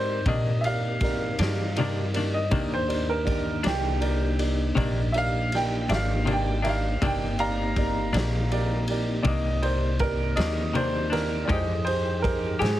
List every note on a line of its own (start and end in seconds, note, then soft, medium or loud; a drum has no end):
0.00 0.23 G#2 medium
0.00 2.47 C4 medium
0.00 0.18 D#4 soft
0.00 2.47 D#4 medium
0.00 0.18 G4 soft
0.00 0.18 A#4 soft
0.00 2.47 A#4 medium
0.00 0.26 C5 medium
0.00 0.18 D5 medium
0.26 1.35 A#2 medium
0.26 0.49 C3 medium
0.26 0.49 D#3 medium
0.26 0.50 A#3 medium
0.26 0.50 D4 medium
0.26 0.55 D#4 soft
0.26 0.55 G4 soft
0.26 0.55 A#4 soft
0.26 0.55 D5 medium
0.26 0.63 D#5 medium
0.26 kick loud
0.26 ride medium
0.61 0.65 E5 medium
0.61 ride medium
0.65 0.93 D#4 soft
0.65 0.93 G4 soft
0.65 0.93 A#4 soft
0.65 0.93 D5 medium
0.65 2.29 F5 medium
1.01 1.30 D#4 soft
1.01 1.30 G4 soft
1.01 1.30 A#4 soft
1.01 1.30 D5 medium
1.01 kick medium
1.01 snare soft
1.01 ride medium
1.39 2.48 G2 medium
1.39 1.63 D#3 soft
1.39 1.62 A#3 soft
1.39 1.62 D4 soft
1.39 1.68 D#4 medium
1.39 1.68 G4 soft
1.39 1.68 A#4 soft
1.39 1.68 D5 medium
1.39 snare loud
1.39 ride medium
1.76 2.00 C3 medium
1.76 2.00 D#3 medium
1.76 2.00 A#3 medium
1.76 2.05 D#4 medium
1.76 2.05 G4 medium
1.76 2.05 A#4 medium
1.76 2.05 D5 medium
1.76 ride medium
1.81 2.01 D4 medium
2.14 2.38 A#3 soft
2.14 2.38 D4 soft
2.14 2.42 D#4 soft
2.14 2.42 G4 soft
2.14 2.42 A#4 soft
2.14 2.42 D5 medium
2.14 ride medium
2.19 2.39 D#3 soft
2.34 2.70 D#5 medium
2.49 3.61 D#2 medium
2.49 2.74 C3 medium
2.49 2.74 D#3 medium
2.49 6.97 A#3 medium
2.49 2.75 A#3 medium
2.49 6.97 D4 medium
2.49 6.96 D#4 medium
2.49 2.80 D#4 medium
2.49 2.80 G4 medium
2.49 2.79 A#4 medium
2.49 2.80 D5 medium
2.49 kick loud
2.49 ride medium
2.53 2.75 D4 medium
2.74 3.08 C5 medium
2.88 3.17 D#4 soft
2.88 3.17 G4 soft
2.88 3.17 A#4 soft
2.88 3.17 D5 medium
2.88 ride medium
3.09 3.63 A#4 medium
3.25 3.54 D#4 medium
3.25 3.54 G4 soft
3.25 3.54 A#4 soft
3.25 3.54 D5 medium
3.25 kick medium
3.25 ride medium
3.63 4.73 C2 medium
3.63 3.88 D#3 soft
3.63 3.87 A#3 medium
3.63 3.86 D4 medium
3.63 3.92 D#4 medium
3.63 3.92 G4 soft
3.63 3.92 A#4 soft
3.63 3.92 D5 medium
3.63 snare loud
3.63 ride medium
3.67 4.38 G4 medium
4.01 4.29 D#4 medium
4.01 4.30 G4 soft
4.01 4.29 A#4 medium
4.01 4.29 D5 medium
4.01 ride medium
4.39 4.67 D#4 soft
4.39 4.67 G4 soft
4.39 4.67 A#4 soft
4.39 4.67 D5 medium
4.39 ride medium
4.75 5.86 A#1 medium
4.75 4.98 C3 medium
4.75 4.99 D#3 medium
4.75 4.99 A#3 medium
4.75 5.00 D4 medium
4.75 5.05 D#4 medium
4.75 5.05 G4 medium
4.75 5.05 A#4 medium
4.75 5.05 D5 medium
4.75 kick loud
4.75 ride medium
5.12 5.43 D#4 soft
5.12 5.42 G4 soft
5.12 5.43 A#4 soft
5.12 5.43 D5 soft
5.12 5.16 E5 medium
5.12 ride medium
5.18 5.52 F5 loud
5.52 5.81 D#4 soft
5.52 5.81 G4 soft
5.52 5.81 A#4 soft
5.52 5.81 D5 medium
5.52 5.90 G5 medium
5.52 snare soft
5.52 ride medium
5.88 6.98 G#1 medium
5.88 6.13 D#3 soft
5.88 6.13 A#3 soft
5.88 6.12 D4 medium
5.88 6.18 D#4 medium
5.88 6.18 G4 medium
5.88 6.18 A#4 soft
5.88 6.18 D5 medium
5.88 5.93 E5 medium
5.88 snare loud
5.88 ride medium
5.95 6.28 F5 medium
6.25 6.48 C3 medium
6.25 6.49 D#3 medium
6.25 6.50 A#3 medium
6.25 6.50 D4 medium
6.25 6.55 D#4 medium
6.25 6.55 G4 medium
6.25 6.55 A#4 soft
6.25 6.55 D5 medium
6.25 ride medium
6.32 6.66 G5 medium
6.62 6.88 D#3 soft
6.62 6.86 A#3 soft
6.62 6.86 D4 soft
6.62 6.92 D#4 soft
6.62 6.93 G4 soft
6.62 6.93 A#4 soft
6.62 6.93 D5 medium
6.62 6.67 E5 medium
6.62 ride medium
6.69 7.03 F5 medium
7.02 8.10 G1 medium
7.02 7.24 C3 medium
7.02 7.25 D#3 medium
7.02 7.25 A#3 medium
7.02 11.47 A#3 medium
7.02 11.47 C4 medium
7.02 7.25 D4 medium
7.02 7.30 D#4 medium
7.02 11.47 D#4 medium
7.02 7.30 G4 medium
7.02 7.29 A#4 medium
7.02 7.30 D5 medium
7.02 7.40 G5 medium
7.02 kick loud
7.02 ride medium
7.39 7.67 D#4 medium
7.39 7.67 G4 soft
7.39 7.67 A#4 soft
7.39 7.67 D5 medium
7.39 8.85 F5 medium
7.39 8.85 A#5 medium
7.39 ride medium
7.76 8.05 D#4 medium
7.76 8.05 G4 soft
7.76 8.05 A#4 soft
7.76 8.05 D5 medium
7.76 kick medium
7.76 ride medium
8.13 9.22 A#1 medium
8.13 8.37 D#3 soft
8.13 8.37 A#3 soft
8.13 8.36 D4 medium
8.13 8.42 D#4 soft
8.13 8.42 G4 soft
8.13 8.42 A#4 soft
8.13 8.42 D5 soft
8.13 ride medium
8.17 snare loud
8.51 8.79 D#4 medium
8.51 8.80 G4 medium
8.51 8.80 A#4 medium
8.51 8.80 D5 medium
8.51 ride medium
8.88 9.17 D#4 medium
8.88 9.17 G4 medium
8.88 9.17 A#4 soft
8.88 9.17 D5 medium
8.88 ride medium
9.23 10.34 C2 medium
9.23 9.47 C3 medium
9.23 9.48 D#3 medium
9.23 9.48 A#3 medium
9.23 9.48 D4 medium
9.23 9.54 G4 soft
9.23 9.27 D5 medium
9.23 kick loud
9.23 ride medium
9.27 9.54 D#4 soft
9.27 9.54 A#4 soft
9.27 9.54 D5 medium
9.27 9.63 D#5 medium
9.62 9.91 D#4 medium
9.62 9.91 G4 soft
9.62 9.91 A#4 soft
9.62 9.99 C5 medium
9.62 9.91 D5 medium
9.62 ride medium
9.99 10.29 D#4 medium
9.99 10.29 G4 soft
9.99 10.37 A#4 medium
9.99 10.29 A#4 soft
9.99 10.29 D5 medium
9.99 kick medium
9.99 ride medium
10.36 11.46 D#2 medium
10.36 10.61 A#3 soft
10.36 10.60 D4 soft
10.36 10.66 D#4 medium
10.36 10.66 G4 soft
10.36 10.66 A#4 soft
10.36 10.66 D5 medium
10.36 10.73 D#5 medium
10.36 snare loud
10.36 ride medium
10.40 10.62 D#3 soft
10.73 10.97 C3 medium
10.73 10.97 D#3 soft
10.73 10.98 A#3 medium
10.73 10.99 D4 medium
10.73 11.04 D#4 medium
10.73 11.04 G4 soft
10.73 11.04 A#4 soft
10.73 11.12 C5 medium
10.73 11.04 D5 medium
10.73 ride medium
11.10 11.35 D#3 soft
11.10 11.35 A#3 soft
11.10 11.34 D4 soft
11.10 11.40 D#4 soft
11.10 11.40 G4 soft
11.10 11.49 A#4 medium
11.10 11.41 A#4 soft
11.10 11.41 D5 medium
11.10 ride medium
11.15 snare soft
11.45 11.71 F3 medium
11.45 11.72 G#3 medium
11.45 11.72 D#4 medium
11.45 11.87 E4 soft
11.45 11.85 G#4 medium
11.45 11.87 A4 medium
11.45 11.50 D5 medium
11.49 12.58 F2 medium
11.49 11.78 D#4 soft
11.49 11.73 G4 medium
11.49 11.78 G4 medium
11.49 11.78 G#4 medium
11.49 11.78 C5 medium
11.49 11.87 D#5 medium
11.49 kick loud
11.49 ride medium
11.85 12.16 D#4 medium
11.85 12.80 D#4 medium
11.85 12.16 G4 soft
11.85 12.80 G#4 medium
11.85 12.16 G#4 soft
11.85 12.22 C5 medium
11.85 12.16 C5 medium
11.85 12.80 G5 medium
11.85 ride medium
12.22 12.52 D#4 medium
12.22 12.53 G4 medium
12.22 12.53 G#4 medium
12.22 12.60 A#4 medium
12.22 12.53 C5 medium
12.22 kick medium
12.22 ride medium
12.59 12.80 G#2 medium
12.59 12.80 G#3 soft
12.59 12.80 D#4 soft
12.59 12.80 G4 medium
12.59 12.80 G4 soft
12.59 12.80 G#4 medium
12.59 12.80 G#4 soft
12.59 12.80 C5 medium
12.59 ride medium
12.64 snare medium